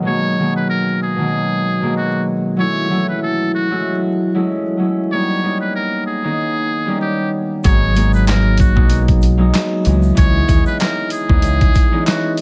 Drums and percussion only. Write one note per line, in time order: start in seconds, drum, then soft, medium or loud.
7.64 kick loud
7.64 closed hi-hat loud
7.64 shaker medium
7.95 closed hi-hat medium
7.95 shaker soft
8.13 shaker soft
8.27 snare loud
8.27 clap medium
8.27 closed hi-hat medium
8.27 shaker medium
8.58 kick medium
8.58 closed hi-hat medium
8.58 shaker medium
8.77 kick medium
8.90 closed hi-hat medium
8.90 shaker medium
9.08 kick medium
9.08 closed hi-hat medium
9.22 closed hi-hat medium
9.22 shaker medium
9.54 snare loud
9.54 clap loud
9.54 closed hi-hat loud
9.54 shaker medium
9.85 closed hi-hat medium
9.85 shaker medium
10.03 shaker medium
10.17 kick loud
10.17 closed hi-hat loud
10.17 shaker medium
10.48 kick loud
10.48 closed hi-hat medium
10.48 shaker soft
10.66 shaker soft
10.80 snare loud
10.80 clap medium
10.80 closed hi-hat medium
10.80 shaker medium
11.10 closed hi-hat medium
11.10 shaker medium
11.29 kick medium
11.42 closed hi-hat medium
11.42 shaker medium
11.61 kick medium
11.61 closed hi-hat soft
11.75 kick medium
11.75 closed hi-hat medium
11.75 shaker medium
12.07 snare loud
12.07 clap loud
12.07 closed hi-hat loud
12.07 shaker medium
12.38 closed hi-hat medium
12.38 shaker soft